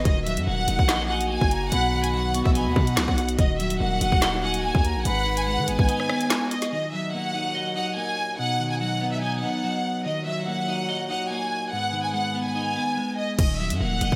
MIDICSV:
0, 0, Header, 1, 7, 480
1, 0, Start_track
1, 0, Key_signature, -6, "minor"
1, 0, Tempo, 416667
1, 61, Time_signature, 4, 2, 24, 8
1, 16308, End_track
2, 0, Start_track
2, 0, Title_t, "Flute"
2, 0, Program_c, 0, 73
2, 782, Note_on_c, 0, 78, 83
2, 1233, Note_off_c, 0, 78, 0
2, 1262, Note_on_c, 0, 80, 71
2, 1713, Note_off_c, 0, 80, 0
2, 1741, Note_on_c, 0, 82, 88
2, 1969, Note_off_c, 0, 82, 0
2, 1981, Note_on_c, 0, 83, 101
2, 2658, Note_off_c, 0, 83, 0
2, 2702, Note_on_c, 0, 85, 73
2, 2929, Note_off_c, 0, 85, 0
2, 2942, Note_on_c, 0, 83, 82
2, 3393, Note_off_c, 0, 83, 0
2, 4621, Note_on_c, 0, 78, 84
2, 5072, Note_off_c, 0, 78, 0
2, 5101, Note_on_c, 0, 80, 91
2, 5552, Note_off_c, 0, 80, 0
2, 5582, Note_on_c, 0, 82, 95
2, 5810, Note_off_c, 0, 82, 0
2, 5822, Note_on_c, 0, 83, 112
2, 6499, Note_off_c, 0, 83, 0
2, 6541, Note_on_c, 0, 80, 89
2, 7218, Note_off_c, 0, 80, 0
2, 16308, End_track
3, 0, Start_track
3, 0, Title_t, "Violin section"
3, 0, Program_c, 1, 48
3, 62, Note_on_c, 1, 75, 86
3, 263, Note_off_c, 1, 75, 0
3, 300, Note_on_c, 1, 76, 77
3, 502, Note_off_c, 1, 76, 0
3, 542, Note_on_c, 1, 78, 95
3, 1218, Note_off_c, 1, 78, 0
3, 1260, Note_on_c, 1, 78, 80
3, 1462, Note_off_c, 1, 78, 0
3, 1500, Note_on_c, 1, 80, 89
3, 1952, Note_off_c, 1, 80, 0
3, 1981, Note_on_c, 1, 78, 112
3, 2326, Note_off_c, 1, 78, 0
3, 2350, Note_on_c, 1, 80, 80
3, 2444, Note_off_c, 1, 80, 0
3, 2463, Note_on_c, 1, 78, 90
3, 2807, Note_off_c, 1, 78, 0
3, 2829, Note_on_c, 1, 76, 85
3, 2923, Note_off_c, 1, 76, 0
3, 2941, Note_on_c, 1, 80, 78
3, 3143, Note_off_c, 1, 80, 0
3, 3182, Note_on_c, 1, 78, 82
3, 3859, Note_off_c, 1, 78, 0
3, 3902, Note_on_c, 1, 75, 84
3, 4103, Note_off_c, 1, 75, 0
3, 4141, Note_on_c, 1, 76, 80
3, 4343, Note_off_c, 1, 76, 0
3, 4382, Note_on_c, 1, 78, 85
3, 5058, Note_off_c, 1, 78, 0
3, 5101, Note_on_c, 1, 78, 88
3, 5302, Note_off_c, 1, 78, 0
3, 5341, Note_on_c, 1, 80, 78
3, 5792, Note_off_c, 1, 80, 0
3, 5821, Note_on_c, 1, 78, 101
3, 6166, Note_off_c, 1, 78, 0
3, 6190, Note_on_c, 1, 80, 87
3, 6284, Note_off_c, 1, 80, 0
3, 6302, Note_on_c, 1, 78, 94
3, 6647, Note_off_c, 1, 78, 0
3, 6669, Note_on_c, 1, 80, 84
3, 7456, Note_off_c, 1, 80, 0
3, 7501, Note_on_c, 1, 75, 84
3, 7703, Note_off_c, 1, 75, 0
3, 7742, Note_on_c, 1, 75, 82
3, 7943, Note_off_c, 1, 75, 0
3, 7981, Note_on_c, 1, 76, 76
3, 8182, Note_off_c, 1, 76, 0
3, 8223, Note_on_c, 1, 78, 90
3, 8899, Note_off_c, 1, 78, 0
3, 8940, Note_on_c, 1, 78, 80
3, 9142, Note_off_c, 1, 78, 0
3, 9180, Note_on_c, 1, 80, 89
3, 9632, Note_off_c, 1, 80, 0
3, 9659, Note_on_c, 1, 78, 103
3, 10005, Note_off_c, 1, 78, 0
3, 10029, Note_on_c, 1, 80, 72
3, 10123, Note_off_c, 1, 80, 0
3, 10142, Note_on_c, 1, 78, 86
3, 10487, Note_off_c, 1, 78, 0
3, 10509, Note_on_c, 1, 76, 81
3, 10603, Note_off_c, 1, 76, 0
3, 10621, Note_on_c, 1, 80, 77
3, 10822, Note_off_c, 1, 80, 0
3, 10862, Note_on_c, 1, 78, 74
3, 11539, Note_off_c, 1, 78, 0
3, 11581, Note_on_c, 1, 75, 82
3, 11782, Note_off_c, 1, 75, 0
3, 11821, Note_on_c, 1, 76, 76
3, 12023, Note_off_c, 1, 76, 0
3, 12061, Note_on_c, 1, 78, 84
3, 12738, Note_off_c, 1, 78, 0
3, 12780, Note_on_c, 1, 78, 84
3, 12982, Note_off_c, 1, 78, 0
3, 13020, Note_on_c, 1, 80, 75
3, 13472, Note_off_c, 1, 80, 0
3, 13500, Note_on_c, 1, 78, 93
3, 13846, Note_off_c, 1, 78, 0
3, 13869, Note_on_c, 1, 80, 81
3, 13963, Note_off_c, 1, 80, 0
3, 13980, Note_on_c, 1, 78, 91
3, 14326, Note_off_c, 1, 78, 0
3, 14349, Note_on_c, 1, 80, 81
3, 15135, Note_off_c, 1, 80, 0
3, 15180, Note_on_c, 1, 75, 81
3, 15382, Note_off_c, 1, 75, 0
3, 15422, Note_on_c, 1, 75, 83
3, 15623, Note_off_c, 1, 75, 0
3, 15660, Note_on_c, 1, 76, 77
3, 15862, Note_off_c, 1, 76, 0
3, 15902, Note_on_c, 1, 78, 94
3, 16308, Note_off_c, 1, 78, 0
3, 16308, End_track
4, 0, Start_track
4, 0, Title_t, "Clean electric guitar"
4, 0, Program_c, 2, 27
4, 61, Note_on_c, 2, 51, 91
4, 303, Note_on_c, 2, 54, 81
4, 544, Note_on_c, 2, 58, 90
4, 779, Note_on_c, 2, 63, 84
4, 1016, Note_on_c, 2, 75, 104
4, 1242, Note_off_c, 2, 63, 0
4, 1256, Note_on_c, 2, 63, 94
4, 1261, Note_off_c, 2, 51, 0
4, 1486, Note_off_c, 2, 58, 0
4, 1500, Note_on_c, 2, 58, 94
4, 1502, Note_off_c, 2, 54, 0
4, 1979, Note_off_c, 2, 63, 0
4, 1979, Note_off_c, 2, 75, 0
4, 1981, Note_off_c, 2, 58, 0
4, 1981, Note_on_c, 2, 47, 94
4, 2222, Note_on_c, 2, 51, 83
4, 2460, Note_on_c, 2, 54, 104
4, 2701, Note_on_c, 2, 59, 82
4, 2943, Note_on_c, 2, 63, 96
4, 3170, Note_off_c, 2, 59, 0
4, 3181, Note_off_c, 2, 47, 0
4, 3184, Note_on_c, 2, 59, 90
4, 3409, Note_off_c, 2, 54, 0
4, 3421, Note_off_c, 2, 51, 0
4, 3423, Note_on_c, 2, 54, 93
4, 3901, Note_on_c, 2, 51, 98
4, 3902, Note_off_c, 2, 54, 0
4, 3902, Note_off_c, 2, 63, 0
4, 3903, Note_off_c, 2, 59, 0
4, 4142, Note_on_c, 2, 54, 83
4, 4382, Note_on_c, 2, 58, 86
4, 4625, Note_on_c, 2, 63, 88
4, 4861, Note_on_c, 2, 75, 97
4, 5088, Note_off_c, 2, 63, 0
4, 5101, Note_off_c, 2, 51, 0
4, 5101, Note_on_c, 2, 63, 87
4, 5326, Note_off_c, 2, 58, 0
4, 5340, Note_on_c, 2, 58, 93
4, 5341, Note_off_c, 2, 54, 0
4, 5820, Note_off_c, 2, 58, 0
4, 5821, Note_off_c, 2, 63, 0
4, 5821, Note_off_c, 2, 75, 0
4, 5821, Note_on_c, 2, 44, 91
4, 6056, Note_on_c, 2, 51, 86
4, 6298, Note_on_c, 2, 56, 88
4, 6543, Note_on_c, 2, 59, 82
4, 6780, Note_on_c, 2, 63, 101
4, 7004, Note_off_c, 2, 59, 0
4, 7017, Note_on_c, 2, 59, 94
4, 7021, Note_off_c, 2, 44, 0
4, 7245, Note_off_c, 2, 56, 0
4, 7259, Note_off_c, 2, 51, 0
4, 7259, Note_on_c, 2, 56, 87
4, 7739, Note_off_c, 2, 59, 0
4, 7740, Note_off_c, 2, 56, 0
4, 7741, Note_off_c, 2, 63, 0
4, 7741, Note_on_c, 2, 51, 88
4, 7983, Note_on_c, 2, 54, 75
4, 8224, Note_on_c, 2, 58, 85
4, 8459, Note_on_c, 2, 63, 78
4, 8696, Note_on_c, 2, 75, 98
4, 8922, Note_off_c, 2, 63, 0
4, 8936, Note_on_c, 2, 63, 91
4, 8941, Note_off_c, 2, 51, 0
4, 9166, Note_off_c, 2, 58, 0
4, 9180, Note_on_c, 2, 58, 85
4, 9182, Note_off_c, 2, 54, 0
4, 9658, Note_off_c, 2, 63, 0
4, 9658, Note_off_c, 2, 75, 0
4, 9661, Note_off_c, 2, 58, 0
4, 9662, Note_on_c, 2, 47, 94
4, 9902, Note_on_c, 2, 51, 76
4, 10140, Note_on_c, 2, 54, 96
4, 10381, Note_on_c, 2, 59, 82
4, 10623, Note_on_c, 2, 63, 89
4, 10850, Note_off_c, 2, 59, 0
4, 10861, Note_off_c, 2, 47, 0
4, 10864, Note_on_c, 2, 59, 80
4, 11089, Note_off_c, 2, 54, 0
4, 11101, Note_off_c, 2, 51, 0
4, 11103, Note_on_c, 2, 54, 89
4, 11581, Note_on_c, 2, 51, 93
4, 11582, Note_off_c, 2, 54, 0
4, 11582, Note_off_c, 2, 59, 0
4, 11582, Note_off_c, 2, 63, 0
4, 11821, Note_on_c, 2, 54, 78
4, 12062, Note_on_c, 2, 58, 83
4, 12305, Note_on_c, 2, 63, 82
4, 12541, Note_on_c, 2, 75, 94
4, 12768, Note_off_c, 2, 63, 0
4, 12781, Note_off_c, 2, 51, 0
4, 12782, Note_on_c, 2, 63, 83
4, 13005, Note_off_c, 2, 58, 0
4, 13019, Note_on_c, 2, 58, 88
4, 13021, Note_off_c, 2, 54, 0
4, 13500, Note_off_c, 2, 58, 0
4, 13501, Note_off_c, 2, 63, 0
4, 13501, Note_off_c, 2, 75, 0
4, 13501, Note_on_c, 2, 44, 87
4, 13737, Note_on_c, 2, 51, 83
4, 13978, Note_on_c, 2, 56, 84
4, 14223, Note_on_c, 2, 59, 80
4, 14460, Note_on_c, 2, 63, 96
4, 14684, Note_off_c, 2, 59, 0
4, 14698, Note_on_c, 2, 59, 86
4, 14701, Note_off_c, 2, 44, 0
4, 14925, Note_off_c, 2, 56, 0
4, 14939, Note_off_c, 2, 51, 0
4, 14939, Note_on_c, 2, 56, 84
4, 15420, Note_off_c, 2, 56, 0
4, 15420, Note_off_c, 2, 59, 0
4, 15421, Note_off_c, 2, 63, 0
4, 15422, Note_on_c, 2, 51, 89
4, 15664, Note_on_c, 2, 54, 78
4, 15904, Note_on_c, 2, 58, 90
4, 16140, Note_on_c, 2, 63, 79
4, 16308, Note_off_c, 2, 51, 0
4, 16308, Note_off_c, 2, 54, 0
4, 16308, Note_off_c, 2, 58, 0
4, 16308, Note_off_c, 2, 63, 0
4, 16308, End_track
5, 0, Start_track
5, 0, Title_t, "French horn section"
5, 0, Program_c, 3, 60
5, 61, Note_on_c, 3, 51, 84
5, 61, Note_on_c, 3, 58, 77
5, 61, Note_on_c, 3, 66, 93
5, 1962, Note_off_c, 3, 51, 0
5, 1962, Note_off_c, 3, 58, 0
5, 1982, Note_on_c, 3, 59, 81
5, 1982, Note_on_c, 3, 75, 91
5, 3863, Note_off_c, 3, 66, 0
5, 3882, Note_off_c, 3, 59, 0
5, 3882, Note_off_c, 3, 75, 0
5, 3902, Note_on_c, 3, 51, 83
5, 3902, Note_on_c, 3, 58, 77
5, 3902, Note_on_c, 3, 66, 96
5, 5802, Note_off_c, 3, 51, 0
5, 5802, Note_off_c, 3, 66, 0
5, 5803, Note_off_c, 3, 58, 0
5, 5821, Note_on_c, 3, 56, 84
5, 5821, Note_on_c, 3, 63, 77
5, 5821, Note_on_c, 3, 71, 90
5, 7545, Note_off_c, 3, 56, 0
5, 7545, Note_off_c, 3, 63, 0
5, 7545, Note_off_c, 3, 71, 0
5, 7741, Note_on_c, 3, 39, 79
5, 7741, Note_on_c, 3, 54, 88
5, 7742, Note_on_c, 3, 46, 71
5, 9642, Note_off_c, 3, 39, 0
5, 9642, Note_off_c, 3, 46, 0
5, 9642, Note_off_c, 3, 54, 0
5, 9661, Note_on_c, 3, 47, 80
5, 9661, Note_on_c, 3, 54, 71
5, 9661, Note_on_c, 3, 63, 87
5, 11562, Note_off_c, 3, 47, 0
5, 11562, Note_off_c, 3, 54, 0
5, 11562, Note_off_c, 3, 63, 0
5, 11580, Note_on_c, 3, 39, 78
5, 11580, Note_on_c, 3, 46, 71
5, 11580, Note_on_c, 3, 54, 88
5, 13481, Note_off_c, 3, 39, 0
5, 13481, Note_off_c, 3, 46, 0
5, 13481, Note_off_c, 3, 54, 0
5, 13500, Note_on_c, 3, 44, 77
5, 13501, Note_on_c, 3, 51, 74
5, 13501, Note_on_c, 3, 59, 87
5, 15402, Note_off_c, 3, 44, 0
5, 15402, Note_off_c, 3, 51, 0
5, 15402, Note_off_c, 3, 59, 0
5, 16308, End_track
6, 0, Start_track
6, 0, Title_t, "808-style bass"
6, 0, Program_c, 4, 38
6, 61, Note_on_c, 4, 27, 107
6, 429, Note_on_c, 4, 42, 102
6, 446, Note_off_c, 4, 27, 0
6, 536, Note_off_c, 4, 42, 0
6, 541, Note_on_c, 4, 27, 109
6, 772, Note_off_c, 4, 27, 0
6, 781, Note_on_c, 4, 27, 101
6, 903, Note_off_c, 4, 27, 0
6, 909, Note_on_c, 4, 34, 97
6, 1600, Note_off_c, 4, 34, 0
6, 1628, Note_on_c, 4, 30, 106
6, 1967, Note_off_c, 4, 30, 0
6, 1981, Note_on_c, 4, 35, 111
6, 2795, Note_off_c, 4, 35, 0
6, 2829, Note_on_c, 4, 34, 108
6, 3068, Note_on_c, 4, 39, 98
6, 3086, Note_off_c, 4, 34, 0
6, 3175, Note_off_c, 4, 39, 0
6, 3181, Note_on_c, 4, 47, 109
6, 3422, Note_on_c, 4, 37, 95
6, 3439, Note_off_c, 4, 47, 0
6, 3542, Note_off_c, 4, 37, 0
6, 3548, Note_on_c, 4, 35, 106
6, 3887, Note_off_c, 4, 35, 0
6, 3901, Note_on_c, 4, 27, 112
6, 4362, Note_off_c, 4, 27, 0
6, 4381, Note_on_c, 4, 27, 107
6, 4612, Note_off_c, 4, 27, 0
6, 4621, Note_on_c, 4, 27, 100
6, 4743, Note_off_c, 4, 27, 0
6, 4749, Note_on_c, 4, 27, 98
6, 5440, Note_off_c, 4, 27, 0
6, 5469, Note_on_c, 4, 39, 111
6, 5708, Note_on_c, 4, 34, 100
6, 5726, Note_off_c, 4, 39, 0
6, 5816, Note_off_c, 4, 34, 0
6, 5821, Note_on_c, 4, 32, 106
6, 6429, Note_on_c, 4, 51, 99
6, 6446, Note_off_c, 4, 32, 0
6, 6541, Note_on_c, 4, 32, 98
6, 6559, Note_off_c, 4, 51, 0
6, 6662, Note_off_c, 4, 32, 0
6, 6669, Note_on_c, 4, 32, 107
6, 6781, Note_off_c, 4, 32, 0
6, 15421, Note_on_c, 4, 27, 103
6, 15788, Note_on_c, 4, 42, 98
6, 15805, Note_off_c, 4, 27, 0
6, 15895, Note_off_c, 4, 42, 0
6, 15901, Note_on_c, 4, 27, 109
6, 16131, Note_off_c, 4, 27, 0
6, 16141, Note_on_c, 4, 27, 99
6, 16263, Note_off_c, 4, 27, 0
6, 16269, Note_on_c, 4, 34, 97
6, 16308, Note_off_c, 4, 34, 0
6, 16308, End_track
7, 0, Start_track
7, 0, Title_t, "Drums"
7, 61, Note_on_c, 9, 36, 120
7, 61, Note_on_c, 9, 42, 86
7, 176, Note_off_c, 9, 42, 0
7, 177, Note_off_c, 9, 36, 0
7, 306, Note_on_c, 9, 42, 67
7, 421, Note_off_c, 9, 42, 0
7, 427, Note_on_c, 9, 42, 82
7, 542, Note_off_c, 9, 42, 0
7, 781, Note_on_c, 9, 42, 86
7, 897, Note_off_c, 9, 42, 0
7, 909, Note_on_c, 9, 36, 95
7, 1021, Note_on_c, 9, 38, 114
7, 1024, Note_off_c, 9, 36, 0
7, 1028, Note_on_c, 9, 39, 95
7, 1137, Note_off_c, 9, 38, 0
7, 1143, Note_off_c, 9, 39, 0
7, 1390, Note_on_c, 9, 42, 70
7, 1505, Note_off_c, 9, 42, 0
7, 1628, Note_on_c, 9, 36, 101
7, 1743, Note_on_c, 9, 42, 72
7, 1744, Note_off_c, 9, 36, 0
7, 1858, Note_off_c, 9, 42, 0
7, 1981, Note_on_c, 9, 42, 85
7, 2096, Note_off_c, 9, 42, 0
7, 2347, Note_on_c, 9, 42, 81
7, 2462, Note_off_c, 9, 42, 0
7, 2701, Note_on_c, 9, 42, 83
7, 2816, Note_off_c, 9, 42, 0
7, 2829, Note_on_c, 9, 36, 97
7, 2941, Note_on_c, 9, 42, 73
7, 2944, Note_off_c, 9, 36, 0
7, 3056, Note_off_c, 9, 42, 0
7, 3181, Note_on_c, 9, 36, 102
7, 3297, Note_off_c, 9, 36, 0
7, 3309, Note_on_c, 9, 42, 71
7, 3421, Note_on_c, 9, 38, 111
7, 3424, Note_off_c, 9, 42, 0
7, 3428, Note_on_c, 9, 39, 92
7, 3537, Note_off_c, 9, 38, 0
7, 3543, Note_off_c, 9, 39, 0
7, 3548, Note_on_c, 9, 36, 96
7, 3663, Note_on_c, 9, 42, 76
7, 3664, Note_off_c, 9, 36, 0
7, 3778, Note_off_c, 9, 42, 0
7, 3785, Note_on_c, 9, 42, 76
7, 3900, Note_off_c, 9, 42, 0
7, 3900, Note_on_c, 9, 42, 85
7, 3901, Note_on_c, 9, 36, 120
7, 4016, Note_off_c, 9, 36, 0
7, 4016, Note_off_c, 9, 42, 0
7, 4145, Note_on_c, 9, 42, 68
7, 4261, Note_off_c, 9, 42, 0
7, 4267, Note_on_c, 9, 42, 78
7, 4382, Note_off_c, 9, 42, 0
7, 4621, Note_on_c, 9, 42, 83
7, 4736, Note_off_c, 9, 42, 0
7, 4749, Note_on_c, 9, 36, 99
7, 4861, Note_on_c, 9, 38, 123
7, 4864, Note_off_c, 9, 36, 0
7, 4867, Note_on_c, 9, 39, 98
7, 4976, Note_off_c, 9, 38, 0
7, 4982, Note_off_c, 9, 39, 0
7, 5229, Note_on_c, 9, 42, 69
7, 5345, Note_off_c, 9, 42, 0
7, 5468, Note_on_c, 9, 36, 100
7, 5583, Note_on_c, 9, 42, 69
7, 5584, Note_off_c, 9, 36, 0
7, 5698, Note_off_c, 9, 42, 0
7, 5821, Note_on_c, 9, 42, 87
7, 5936, Note_off_c, 9, 42, 0
7, 6187, Note_on_c, 9, 42, 81
7, 6302, Note_off_c, 9, 42, 0
7, 6541, Note_on_c, 9, 42, 83
7, 6656, Note_off_c, 9, 42, 0
7, 6669, Note_on_c, 9, 36, 101
7, 6782, Note_on_c, 9, 42, 74
7, 6784, Note_off_c, 9, 36, 0
7, 6897, Note_off_c, 9, 42, 0
7, 6909, Note_on_c, 9, 37, 69
7, 7021, Note_off_c, 9, 37, 0
7, 7021, Note_on_c, 9, 37, 100
7, 7136, Note_off_c, 9, 37, 0
7, 7150, Note_on_c, 9, 42, 73
7, 7262, Note_on_c, 9, 38, 114
7, 7265, Note_off_c, 9, 42, 0
7, 7268, Note_on_c, 9, 39, 96
7, 7377, Note_off_c, 9, 38, 0
7, 7383, Note_off_c, 9, 39, 0
7, 7503, Note_on_c, 9, 42, 76
7, 7619, Note_off_c, 9, 42, 0
7, 7626, Note_on_c, 9, 42, 75
7, 7628, Note_on_c, 9, 38, 62
7, 7741, Note_off_c, 9, 42, 0
7, 7743, Note_off_c, 9, 38, 0
7, 15421, Note_on_c, 9, 36, 113
7, 15421, Note_on_c, 9, 42, 84
7, 15421, Note_on_c, 9, 49, 94
7, 15536, Note_off_c, 9, 36, 0
7, 15536, Note_off_c, 9, 42, 0
7, 15536, Note_off_c, 9, 49, 0
7, 15787, Note_on_c, 9, 42, 82
7, 15902, Note_off_c, 9, 42, 0
7, 16141, Note_on_c, 9, 42, 79
7, 16256, Note_off_c, 9, 42, 0
7, 16269, Note_on_c, 9, 36, 98
7, 16308, Note_off_c, 9, 36, 0
7, 16308, End_track
0, 0, End_of_file